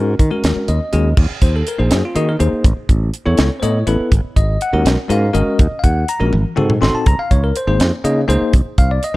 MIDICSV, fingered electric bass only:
0, 0, Header, 1, 3, 480
1, 0, Start_track
1, 0, Tempo, 490998
1, 1146, Time_signature, 6, 3, 24, 8
1, 8959, End_track
2, 0, Start_track
2, 0, Title_t, "Fingered electric bass"
2, 0, Program_c, 0, 33
2, 0, Note_on_c, 0, 44, 78
2, 140, Note_off_c, 0, 44, 0
2, 190, Note_on_c, 0, 51, 79
2, 284, Note_off_c, 0, 51, 0
2, 429, Note_on_c, 0, 39, 74
2, 524, Note_off_c, 0, 39, 0
2, 668, Note_on_c, 0, 39, 76
2, 763, Note_off_c, 0, 39, 0
2, 913, Note_on_c, 0, 39, 83
2, 1102, Note_off_c, 0, 39, 0
2, 1147, Note_on_c, 0, 39, 85
2, 1243, Note_off_c, 0, 39, 0
2, 1385, Note_on_c, 0, 39, 76
2, 1577, Note_off_c, 0, 39, 0
2, 1754, Note_on_c, 0, 34, 77
2, 1847, Note_off_c, 0, 34, 0
2, 1871, Note_on_c, 0, 42, 81
2, 1965, Note_off_c, 0, 42, 0
2, 2108, Note_on_c, 0, 51, 76
2, 2299, Note_off_c, 0, 51, 0
2, 2349, Note_on_c, 0, 39, 88
2, 2444, Note_off_c, 0, 39, 0
2, 2587, Note_on_c, 0, 33, 96
2, 2683, Note_off_c, 0, 33, 0
2, 2828, Note_on_c, 0, 33, 81
2, 3019, Note_off_c, 0, 33, 0
2, 3192, Note_on_c, 0, 40, 74
2, 3285, Note_off_c, 0, 40, 0
2, 3310, Note_on_c, 0, 37, 76
2, 3404, Note_off_c, 0, 37, 0
2, 3546, Note_on_c, 0, 45, 72
2, 3738, Note_off_c, 0, 45, 0
2, 3786, Note_on_c, 0, 33, 88
2, 3882, Note_off_c, 0, 33, 0
2, 4025, Note_on_c, 0, 32, 95
2, 4122, Note_off_c, 0, 32, 0
2, 4267, Note_on_c, 0, 32, 77
2, 4458, Note_off_c, 0, 32, 0
2, 4627, Note_on_c, 0, 39, 86
2, 4723, Note_off_c, 0, 39, 0
2, 4744, Note_on_c, 0, 35, 83
2, 4840, Note_off_c, 0, 35, 0
2, 4982, Note_on_c, 0, 44, 83
2, 5176, Note_off_c, 0, 44, 0
2, 5226, Note_on_c, 0, 32, 95
2, 5322, Note_off_c, 0, 32, 0
2, 5470, Note_on_c, 0, 39, 99
2, 5565, Note_off_c, 0, 39, 0
2, 5708, Note_on_c, 0, 39, 82
2, 5899, Note_off_c, 0, 39, 0
2, 6067, Note_on_c, 0, 34, 82
2, 6163, Note_off_c, 0, 34, 0
2, 6191, Note_on_c, 0, 32, 87
2, 6285, Note_off_c, 0, 32, 0
2, 6428, Note_on_c, 0, 44, 72
2, 6619, Note_off_c, 0, 44, 0
2, 6667, Note_on_c, 0, 32, 82
2, 6763, Note_off_c, 0, 32, 0
2, 6907, Note_on_c, 0, 37, 94
2, 7003, Note_off_c, 0, 37, 0
2, 7150, Note_on_c, 0, 37, 82
2, 7340, Note_off_c, 0, 37, 0
2, 7503, Note_on_c, 0, 32, 84
2, 7600, Note_off_c, 0, 32, 0
2, 7624, Note_on_c, 0, 41, 88
2, 7721, Note_off_c, 0, 41, 0
2, 7861, Note_on_c, 0, 49, 76
2, 8055, Note_off_c, 0, 49, 0
2, 8099, Note_on_c, 0, 37, 90
2, 8198, Note_off_c, 0, 37, 0
2, 8344, Note_on_c, 0, 36, 101
2, 8441, Note_off_c, 0, 36, 0
2, 8584, Note_on_c, 0, 36, 82
2, 8777, Note_off_c, 0, 36, 0
2, 8959, End_track
3, 0, Start_track
3, 0, Title_t, "Muted fingered electric bass strokes"
3, 550, Note_on_c, 9, 29, 32
3, 647, Note_off_c, 9, 29, 0
3, 1275, Note_on_c, 9, 29, 31
3, 1373, Note_off_c, 9, 29, 0
3, 2471, Note_on_c, 9, 29, 36
3, 2568, Note_off_c, 9, 29, 0
3, 2706, Note_on_c, 9, 29, 33
3, 2803, Note_off_c, 9, 29, 0
3, 3912, Note_on_c, 9, 29, 37
3, 4009, Note_off_c, 9, 29, 0
3, 5347, Note_on_c, 9, 29, 36
3, 5445, Note_off_c, 9, 29, 0
3, 5586, Note_on_c, 9, 29, 35
3, 5684, Note_off_c, 9, 29, 0
3, 7025, Note_on_c, 9, 29, 35
3, 7123, Note_off_c, 9, 29, 0
3, 8227, Note_on_c, 9, 29, 38
3, 8324, Note_off_c, 9, 29, 0
3, 8959, End_track
0, 0, End_of_file